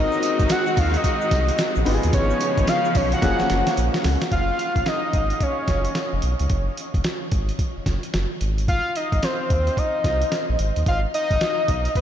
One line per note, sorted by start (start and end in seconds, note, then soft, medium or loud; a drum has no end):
0.00 1.84 D#3 medium
0.00 3.19 G#3 medium
0.00 1.82 C4 medium
0.00 1.84 C4 medium
0.00 1.82 D#4 medium
0.00 1.83 F#4 medium
0.00 1.85 F#4 medium
0.00 1.83 A#4 medium
0.00 0.53 D#5 loud
0.12 shaker medium
0.22 closed hi-hat medium
0.22 tambourine medium
0.22 shaker medium
0.39 0.47 G#1 medium
0.39 kick loud
0.39 closed hi-hat medium
0.39 shaker medium
0.49 0.80 F#5 loud
0.49 snare loud
0.49 closed hi-hat medium
0.49 tambourine medium
0.49 shaker medium
0.66 shaker medium
0.77 0.97 D#2 medium
0.77 0.98 F5 loud
0.77 kick loud
0.77 open hi-hat medium
0.77 tambourine medium
0.77 shaker soft
0.94 1.87 D#5 loud
0.94 closed hi-hat medium
0.94 shaker soft
1.04 kick medium
1.04 closed hi-hat medium
1.04 tambourine medium
1.04 shaker medium
1.21 shaker medium
1.31 1.51 C2 medium
1.31 kick loud
1.31 snare medium
1.31 closed hi-hat medium
1.31 tambourine medium
1.48 closed hi-hat medium
1.48 shaker medium
1.58 snare loud
1.58 closed hi-hat medium
1.58 tambourine medium
1.58 shaker medium
1.75 1.84 A#1 loud
1.75 shaker medium
1.85 1.99 G#1 loud
1.85 4.29 C#3 medium
1.85 4.29 F3 medium
1.85 3.20 B3 medium
1.85 3.21 B3 medium
1.85 3.20 D#4 medium
1.85 3.20 F4 medium
1.85 1.95 G4 medium
1.85 open hi-hat medium
1.85 shaker soft
1.94 3.23 G#4 medium
2.03 2.11 D#2 medium
2.03 closed hi-hat medium
2.03 shaker medium
2.13 2.33 G#1 loud
2.13 2.70 C#5 loud
2.13 kick loud
2.13 closed hi-hat medium
2.13 tambourine medium
2.13 shaker medium
2.30 shaker medium
2.40 closed hi-hat medium
2.40 tambourine medium
2.40 shaker soft
2.58 2.65 G#1 loud
2.58 kick medium
2.58 closed hi-hat medium
2.58 shaker medium
2.67 2.98 F5 loud
2.67 snare loud
2.67 closed hi-hat medium
2.67 tambourine medium
2.67 shaker medium
2.85 shaker medium
2.95 3.15 B1 loud
2.95 3.13 C#5 loud
2.95 kick loud
2.95 open hi-hat medium
2.95 tambourine medium
2.95 shaker soft
3.12 3.74 F#5 loud
3.12 closed hi-hat soft
3.12 shaker medium
3.22 3.35 F#1 loud
3.22 4.30 F3 medium
3.22 4.29 A#3 medium
3.22 4.30 A#3 medium
3.22 4.30 C#4 medium
3.22 4.30 G#4 medium
3.22 kick medium
3.22 snare medium
3.22 closed hi-hat medium
3.22 shaker medium
3.39 3.44 F#1 medium
3.39 snare medium
3.39 shaker medium
3.50 3.63 F#1 medium
3.50 snare medium
3.50 closed hi-hat medium
3.67 snare medium
3.67 closed hi-hat medium
3.67 shaker medium
3.77 3.90 A#1 medium
3.77 closed hi-hat medium
3.77 shaker medium
3.94 snare medium
3.94 shaker medium
4.04 4.17 C#2 loud
4.04 snare loud
4.04 open hi-hat medium
4.04 shaker soft
4.21 snare medium
4.21 closed hi-hat medium
4.21 shaker medium
4.32 4.51 F#1 loud
4.32 4.89 F5 loud
4.32 kick loud
4.32 closed hi-hat medium
4.59 closed hi-hat medium
4.76 4.83 A#1 medium
4.76 kick medium
4.76 closed hi-hat soft
4.86 5.44 D#5 loud
4.86 snare loud
4.86 closed hi-hat medium
5.13 5.33 G#1 medium
5.13 kick loud
5.13 closed hi-hat medium
5.30 closed hi-hat soft
5.41 6.24 C#5 medium
5.41 kick medium
5.41 closed hi-hat medium
5.68 5.87 F#1 medium
5.68 kick medium
5.68 snare medium
5.68 closed hi-hat medium
5.85 closed hi-hat medium
5.95 snare loud
5.95 closed hi-hat medium
6.13 6.20 F1 medium
6.22 6.35 B1 medium
6.22 closed hi-hat medium
6.39 6.47 C#2 medium
6.39 closed hi-hat soft
6.50 6.69 F#1 medium
6.50 kick loud
6.50 closed hi-hat medium
6.77 closed hi-hat medium
6.94 7.02 F#1 medium
6.94 kick medium
6.94 closed hi-hat soft
7.04 snare loud
7.04 closed hi-hat medium
7.32 7.51 G#1 medium
7.32 kick loud
7.32 closed hi-hat medium
7.49 closed hi-hat soft
7.59 kick medium
7.59 closed hi-hat medium
7.77 7.81 F#1 soft
7.86 7.99 F#1 medium
7.86 kick medium
7.86 snare medium
7.86 closed hi-hat medium
8.03 closed hi-hat medium
8.14 8.26 F#1 medium
8.14 snare loud
8.14 closed hi-hat medium
8.41 8.80 G#1 medium
8.41 closed hi-hat medium
8.58 closed hi-hat soft
8.68 8.98 F5 loud
8.68 kick loud
8.68 closed hi-hat medium
8.96 9.25 D#5 loud
8.96 closed hi-hat medium
9.12 9.20 G#1 medium
9.12 kick medium
9.12 closed hi-hat soft
9.23 9.80 C5 medium
9.23 snare loud
9.23 closed hi-hat medium
9.50 9.70 D#2 medium
9.50 kick loud
9.50 closed hi-hat medium
9.67 closed hi-hat soft
9.77 10.60 D#5 medium
9.77 kick medium
9.77 closed hi-hat medium
10.04 10.24 C2 medium
10.04 kick medium
10.04 snare medium
10.04 closed hi-hat medium
10.22 closed hi-hat medium
10.32 snare medium
10.32 closed hi-hat medium
10.49 10.56 A#1 medium
10.59 10.72 G#1 medium
10.59 closed hi-hat medium
10.76 10.84 D#2 medium
10.76 closed hi-hat soft
10.86 11.06 G#1 loud
10.86 11.00 F5 loud
10.86 kick loud
10.86 closed hi-hat medium
11.14 11.92 D#5 loud
11.14 closed hi-hat medium
11.31 11.38 G#1 medium
11.31 kick medium
11.31 closed hi-hat soft
11.41 snare loud
11.41 closed hi-hat medium
11.68 11.88 B1 loud
11.68 kick medium
11.68 closed hi-hat medium
11.85 closed hi-hat soft
11.95 12.01 C#5 medium
11.95 kick medium
11.95 closed hi-hat medium